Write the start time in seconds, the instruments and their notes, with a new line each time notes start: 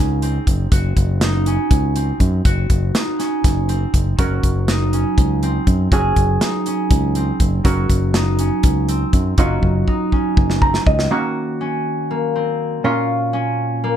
Already playing: fingered electric bass C#2, harp C#4 D#4 G#4
0.22 harp C4, closed hi-hat
0.47 fingered electric bass F#1, kick, closed hi-hat
0.72 fingered electric bass F#1, harp F#4, kick, closed hi-hat
0.96 fingered electric bass F#1, kick, closed hi-hat
1.21 harp D#4, snare, closed hi-hat
1.46 harp C#4, closed hi-hat
1.71 fingered electric bass C#2, kick, closed hi-hat
1.96 harp C4, closed hi-hat
2.20 fingered electric bass F#2, kick, closed hi-hat
2.45 fingered electric bass F#1, harp F#4, kick, closed hi-hat
2.70 fingered electric bass F#1, kick, closed hi-hat
2.95 harp D#4, snare, closed hi-hat
3.19 harp C#4, snare, closed hi-hat
3.44 fingered electric bass F#1, kick, snare, closed hi-hat
3.69 harp C4, closed hi-hat
3.94 fingered electric bass F#1, kick, closed hi-hat
4.19 fingered electric bass F#1, hollow-body jazz guitar F#3 C#4 F#4 A#4, harp F#4, kick, closed hi-hat
4.43 fingered electric bass F#1, kick, closed hi-hat
4.68 harp D#4, snare, closed hi-hat
4.93 harp C#4, closed hi-hat
5.18 fingered electric bass C#2, kick, closed hi-hat
5.43 harp C4, closed hi-hat
5.67 fingered electric bass F#2, kick, closed hi-hat
5.92 fingered electric bass F#1, hollow-body jazz guitar F#3 C#4 F#4 G#4, harp G#4, kick, closed hi-hat
6.16 fingered electric bass F#1, kick, closed hi-hat
6.41 harp D#4, snare, closed hi-hat
6.66 harp C#4, closed hi-hat
6.91 fingered electric bass C#2, kick, closed hi-hat
7.15 harp C4, closed hi-hat
7.40 fingered electric bass F#1, kick, closed hi-hat
7.65 fingered electric bass F#1, hollow-body jazz guitar F#3 C#4 F#4 A#4, harp F#4, kick, closed hi-hat
7.89 fingered electric bass F#1, kick, closed hi-hat
8.14 harp D#4, snare, closed hi-hat
8.39 harp C#4, closed hi-hat
8.63 fingered electric bass C#2, kick, closed hi-hat
8.88 harp C4, closed hi-hat
9.13 fingered electric bass F#2, kick, closed hi-hat
9.38 fingered electric bass F#1, hollow-body jazz guitar F#3 C#4 D#4 F4, harp F#4, kick, closed hi-hat
9.63 fingered electric bass F#1, kick
9.87 harp D#4, kick
10.12 harp C#4, kick
10.37 fingered electric bass F#1, kick
10.50 snare
10.62 harp C4, hollow-body jazz guitar A#5, kick
10.74 snare
10.86 fingered electric bass C#2, hollow-body jazz guitar D#5, kick
10.99 snare
11.11 hollow-body jazz guitar D#3 A#3 C#4 F#4, harp F#4
11.61 harp C#4
12.11 harp A#3
12.35 harp C4
12.84 hollow-body jazz guitar A#2 A#3 C#4 F4, harp F4
13.33 harp C#4
13.84 harp A#3